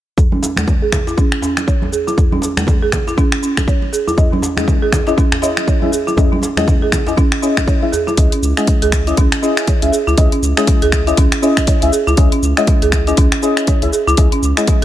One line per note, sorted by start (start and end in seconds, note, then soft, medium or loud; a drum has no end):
0.18 kick loud
0.18 djembe bass medium
0.18 cabasa soft
0.32 0.38 C#4 medium
0.32 high conga medium
0.43 djembe slap medium
0.43 muted conga medium
0.43 cabasa medium
0.56 0.67 G#3 medium
0.56 finger snap medium
0.56 high conga medium
0.56 djembe tone medium
0.56 djembe bass medium
0.56 cabasa soft
0.67 kick loud
0.67 muted conga soft
0.67 low conga medium
0.67 cabasa soft
0.82 0.92 G#4 medium
0.92 finger snap medium
0.92 kick medium
0.92 djembe slap medium
0.92 muted conga soft
0.92 djembe tone medium
0.92 low conga medium
0.92 cabasa medium
1.07 1.17 E4 medium
1.07 djembe slap medium
1.07 cabasa soft
1.17 1.31 C#4 medium
1.17 kick loud
1.17 muted conga soft
1.17 cabasa soft
1.32 finger snap medium
1.42 1.56 C#4 medium
1.42 djembe slap medium
1.42 djembe tone medium
1.42 cabasa medium
1.57 finger snap medium
1.57 muted conga medium
1.57 cabasa soft
1.68 1.81 C#5 medium
1.68 kick loud
1.68 cabasa soft
1.82 muted conga soft
1.82 high conga medium
1.82 djembe tone medium
1.92 2.01 G#4 medium
1.92 cabasa medium
2.07 2.17 E4 medium
2.07 muted conga soft
2.07 cabasa soft
2.18 kick loud
2.18 djembe bass medium
2.18 cabasa soft
2.32 2.38 C#4 medium
2.32 high conga medium
2.32 djembe tone medium
2.42 djembe slap medium
2.42 muted conga soft
2.42 cabasa medium
2.57 2.67 G#3 medium
2.57 finger snap medium
2.57 high conga medium
2.57 djembe bass medium
2.57 cabasa medium
2.67 kick loud
2.67 muted conga soft
2.67 djembe tone medium
2.67 low conga loud
2.67 cabasa soft
2.82 2.92 G#4 medium
2.92 finger snap medium
2.92 kick medium
2.92 muted conga soft
2.92 djembe slap medium
2.92 low conga medium
2.92 cabasa medium
3.07 3.17 E4 medium
3.07 djembe slap medium
3.07 cabasa soft
3.17 3.31 C#4 loud
3.17 kick loud
3.17 muted conga soft
3.17 djembe tone medium
3.17 cabasa soft
3.32 finger snap medium
3.43 3.56 C#4 medium
3.43 cabasa medium
3.57 finger snap medium
3.57 kick medium
3.57 muted conga soft
3.57 high conga medium
3.57 djembe tone medium
3.57 cabasa medium
3.68 3.81 C#5 medium
3.68 kick loud
3.68 cabasa soft
3.82 muted conga soft
3.93 4.01 G#4 medium
3.93 cabasa medium
4.08 4.17 E4 medium
4.08 muted conga soft
4.08 djembe tone medium
4.08 cabasa soft
4.18 4.30 C#4 medium
4.18 4.30 E4 medium
4.18 4.29 G#4 medium
4.18 4.30 D#5 medium
4.18 kick loud
4.18 djembe bass medium
4.18 cabasa soft
4.32 4.38 C#4 medium
4.32 high conga medium
4.42 muted conga soft
4.42 djembe slap medium
4.42 djembe tone medium
4.42 cabasa medium
4.57 4.67 G#3 medium
4.57 5.04 C#4 medium
4.57 5.04 E4 medium
4.57 5.04 G#4 medium
4.57 5.04 D#5 medium
4.57 finger snap medium
4.57 high conga medium
4.57 djembe bass medium
4.57 cabasa medium
4.67 kick loud
4.67 muted conga soft
4.67 low conga loud
4.67 cabasa soft
4.82 4.92 G#4 medium
4.92 finger snap medium
4.92 kick medium
4.92 muted conga soft
4.92 djembe slap medium
4.92 djembe tone medium
4.92 low conga medium
4.92 cabasa medium
5.07 5.16 C#4 medium
5.07 5.17 E4 medium
5.07 5.16 E4 medium
5.07 5.16 G#4 medium
5.07 5.16 D#5 loud
5.07 djembe slap medium
5.07 cabasa medium
5.17 5.31 C#4 medium
5.17 kick loud
5.17 muted conga soft
5.17 cabasa soft
5.32 finger snap medium
5.32 djembe tone medium
5.42 5.56 C#4 medium
5.42 5.79 C#4 loud
5.42 5.79 E4 medium
5.42 5.79 G#4 medium
5.42 5.79 D#5 loud
5.42 djembe slap medium
5.42 cabasa medium
5.57 finger snap medium
5.57 muted conga soft
5.57 cabasa medium
5.67 5.81 C#5 medium
5.67 kick loud
5.67 cabasa soft
5.82 5.90 C#4 medium
5.82 5.91 E4 medium
5.82 5.90 G#4 medium
5.82 5.91 E5 loud
5.82 muted conga soft
5.82 high conga medium
5.82 djembe tone medium
5.92 6.00 G#4 medium
5.92 cabasa medium
6.07 6.17 E4 loud
6.07 muted conga soft
6.07 cabasa medium
6.17 6.29 C#4 medium
6.17 6.29 E4 medium
6.17 6.29 G#4 medium
6.17 6.29 D#5 medium
6.17 kick loud
6.17 djembe tone medium
6.17 djembe bass medium
6.17 cabasa soft
6.32 6.38 C#4 medium
6.32 high conga medium
6.42 muted conga soft
6.42 djembe slap medium
6.42 cabasa medium
6.57 6.67 G#3 medium
6.57 7.04 C#4 medium
6.57 7.04 E4 medium
6.57 7.04 G#4 medium
6.57 7.04 D#5 medium
6.57 finger snap medium
6.57 high conga medium
6.57 djembe bass medium
6.57 cabasa medium
6.67 kick loud
6.67 muted conga soft
6.67 djembe tone medium
6.67 low conga medium
6.67 cabasa soft
6.82 6.92 G#4 medium
6.92 finger snap medium
6.92 kick medium
6.92 djembe slap medium
6.92 muted conga soft
6.92 low conga medium
6.92 cabasa medium
7.07 7.16 C#4 medium
7.07 7.17 E4 medium
7.07 7.16 E4 medium
7.07 7.16 G#4 medium
7.07 7.16 D#5 loud
7.07 djembe slap medium
7.07 djembe tone medium
7.07 cabasa medium
7.17 7.31 C#4 loud
7.17 kick loud
7.17 muted conga soft
7.17 cabasa soft
7.32 finger snap medium
7.42 7.56 C#4 medium
7.42 7.79 C#4 medium
7.42 7.79 E4 medium
7.42 7.79 G#4 medium
7.42 7.79 D#5 loud
7.42 cabasa medium
7.57 finger snap medium
7.57 kick medium
7.57 muted conga soft
7.57 high conga medium
7.57 djembe tone medium
7.57 cabasa medium
7.67 7.81 C#5 medium
7.67 kick loud
7.67 cabasa soft
7.82 7.91 C#4 medium
7.82 7.91 E4 medium
7.82 7.91 G#4 medium
7.82 7.91 E5 loud
7.82 muted conga soft
7.92 8.01 G#4 medium
7.92 djembe tone medium
7.92 cabasa medium
8.07 8.17 E4 loud
8.07 muted conga medium
8.07 cabasa medium
8.17 8.28 C#2 medium
8.17 8.29 C#4 medium
8.17 8.29 E4 medium
8.17 8.29 G#4 medium
8.17 8.30 D#5 medium
8.17 kick loud
8.17 closed hi-hat medium
8.17 cabasa soft
8.32 8.38 C#4 medium
8.32 closed hi-hat soft
8.43 8.53 C#2 loud
8.43 cabasa medium
8.57 8.67 G#3 medium
8.57 9.04 C#4 medium
8.57 9.04 E4 medium
8.57 9.04 G#4 medium
8.57 9.04 D#5 medium
8.57 finger snap medium
8.57 cabasa soft
8.67 kick loud
8.67 closed hi-hat medium
8.67 cabasa soft
8.82 9.13 C#2 medium
8.82 8.92 G#4 medium
8.82 closed hi-hat soft
8.92 finger snap medium
8.92 kick medium
8.92 cabasa medium
9.07 9.16 C#4 medium
9.07 9.15 E4 medium
9.07 9.17 E4 medium
9.07 9.15 G#4 medium
9.07 9.15 D#5 loud
9.07 closed hi-hat soft
9.07 cabasa soft
9.17 9.28 C#2 medium
9.17 9.31 C#4 loud
9.17 kick loud
9.17 closed hi-hat medium
9.17 cabasa soft
9.32 finger snap medium
9.32 closed hi-hat soft
9.42 9.56 C#4 medium
9.42 9.79 C#4 loud
9.42 9.79 E4 medium
9.42 9.79 G#4 medium
9.42 9.79 D#5 loud
9.42 cabasa medium
9.57 finger snap medium
9.57 closed hi-hat soft
9.57 cabasa soft
9.67 9.81 C#5 medium
9.67 kick loud
9.67 closed hi-hat medium
9.67 cabasa soft
9.82 9.90 C#2 medium
9.82 9.90 C#4 medium
9.82 9.90 E4 medium
9.82 9.90 G#4 medium
9.82 9.90 E5 loud
9.82 closed hi-hat soft
9.92 10.01 G#4 medium
9.92 cabasa medium
10.07 10.15 C#2 medium
10.07 10.17 E4 loud
10.07 cabasa medium
10.18 10.28 C#2 loud
10.18 10.29 C#4 medium
10.18 10.29 E4 medium
10.18 10.29 G#4 medium
10.18 10.29 D#5 medium
10.18 kick loud
10.18 closed hi-hat medium
10.18 cabasa soft
10.32 10.38 C#4 medium
10.32 closed hi-hat soft
10.43 10.53 C#2 loud
10.43 cabasa loud
10.57 10.67 G#3 medium
10.57 11.04 C#4 medium
10.57 11.04 E4 medium
10.57 11.04 G#4 medium
10.57 11.04 D#5 medium
10.57 finger snap medium
10.57 cabasa medium
10.67 kick loud
10.67 closed hi-hat medium
10.67 cabasa soft
10.82 11.13 C#2 medium
10.82 10.92 G#4 loud
10.82 closed hi-hat soft
10.92 finger snap medium
10.92 kick medium
10.92 cabasa medium
11.07 11.15 C#4 medium
11.07 11.17 E4 medium
11.07 11.15 E4 medium
11.07 11.15 G#4 medium
11.07 11.15 D#5 loud
11.07 closed hi-hat soft
11.07 cabasa medium
11.17 11.28 C#2 medium
11.17 11.31 C#4 medium
11.17 kick loud
11.17 closed hi-hat medium
11.17 cabasa soft
11.32 finger snap medium
11.32 closed hi-hat soft
11.42 11.56 C#4 medium
11.42 11.79 C#4 loud
11.42 11.79 E4 medium
11.42 11.79 G#4 medium
11.42 11.79 D#5 loud
11.42 cabasa medium
11.57 finger snap medium
11.57 kick medium
11.57 closed hi-hat soft
11.57 cabasa medium
11.67 11.81 C#5 medium
11.67 kick loud
11.67 closed hi-hat medium
11.67 cabasa soft
11.82 11.90 C#2 medium
11.82 11.91 C#4 medium
11.82 11.91 E4 medium
11.82 11.91 G#4 medium
11.82 11.91 E5 loud
11.82 closed hi-hat soft
11.93 12.01 G#4 medium
11.93 cabasa medium
12.07 12.15 C#2 medium
12.07 12.17 E4 loud
12.07 cabasa medium
12.17 12.28 C#2 loud
12.17 12.29 C#4 medium
12.17 12.29 E4 medium
12.17 12.29 G#4 medium
12.17 12.29 D#5 medium
12.17 kick loud
12.17 closed hi-hat medium
12.17 cabasa soft
12.32 12.38 C#4 medium
12.32 closed hi-hat soft
12.43 12.53 C#2 loud
12.43 cabasa medium
12.57 12.67 G#3 medium
12.57 13.04 C#4 medium
12.57 13.04 E4 medium
12.57 13.04 G#4 medium
12.57 13.04 D#5 medium
12.57 finger snap medium
12.57 cabasa medium
12.67 kick loud
12.67 closed hi-hat medium
12.67 cabasa soft
12.82 13.13 C#2 medium
12.82 12.92 G#4 loud
12.82 closed hi-hat soft
12.92 finger snap medium
12.92 kick medium
12.92 cabasa medium
13.07 13.15 C#4 loud
13.07 13.16 E4 medium
13.07 13.17 E4 medium
13.07 13.16 G#4 medium
13.07 13.16 D#5 loud
13.07 closed hi-hat soft
13.07 cabasa medium
13.17 13.28 C#2 medium
13.17 13.31 C#4 loud
13.17 kick loud
13.17 closed hi-hat medium
13.17 cabasa soft
13.32 finger snap medium
13.32 closed hi-hat soft
13.43 13.79 C#4 loud
13.43 13.56 C#4 medium
13.43 13.79 E4 medium
13.43 13.79 G#4 medium
13.43 13.79 D#5 loud
13.43 cabasa medium
13.57 finger snap medium
13.57 closed hi-hat soft
13.57 cabasa medium
13.67 13.81 C#5 medium
13.67 kick loud
13.67 closed hi-hat medium
13.67 cabasa soft
13.82 13.90 C#2 medium
13.82 13.91 C#4 medium
13.82 13.91 E4 medium
13.82 13.91 G#4 medium
13.82 13.91 E5 loud
13.82 closed hi-hat soft
13.93 14.01 G#4 medium
13.93 cabasa medium
14.07 14.15 C#2 medium
14.07 14.17 E4 loud
14.07 cabasa medium
14.17 14.28 C#2 loud
14.17 14.29 C#4 medium
14.17 14.29 E4 medium
14.17 14.29 G#4 medium
14.17 14.29 D#5 medium
14.17 kick loud
14.17 closed hi-hat medium
14.17 cabasa soft
14.32 14.38 C#4 medium
14.32 closed hi-hat soft
14.43 14.53 C#2 loud
14.43 cabasa medium
14.57 14.67 G#3 medium
14.57 14.85 C#4 medium
14.57 14.85 E4 medium
14.57 14.85 G#4 medium
14.57 14.85 D#5 medium
14.57 finger snap medium
14.57 cabasa medium
14.67 kick loud
14.67 closed hi-hat medium
14.67 cabasa soft